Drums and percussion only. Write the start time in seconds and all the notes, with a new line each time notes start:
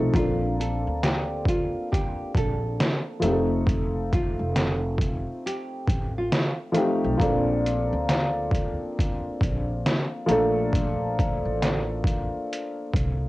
0.14 kick, closed hi-hat
0.61 closed hi-hat
1.03 snare, closed hi-hat
1.45 kick, closed hi-hat
1.93 kick, closed hi-hat
2.35 kick, closed hi-hat
2.80 snare, closed hi-hat
3.22 closed hi-hat
3.67 kick, closed hi-hat
4.13 kick, closed hi-hat
4.56 snare, closed hi-hat
4.98 kick, closed hi-hat
5.47 closed hi-hat
5.88 kick, closed hi-hat
6.32 snare, closed hi-hat
6.75 closed hi-hat
7.20 kick, closed hi-hat
7.66 closed hi-hat
8.09 snare, closed hi-hat
8.51 kick, closed hi-hat
8.99 kick, closed hi-hat
9.41 kick, closed hi-hat
9.86 snare, closed hi-hat
10.29 closed hi-hat
10.73 kick, closed hi-hat
11.19 kick, closed hi-hat
11.62 snare, closed hi-hat
12.04 kick, closed hi-hat
12.53 closed hi-hat
12.94 kick, closed hi-hat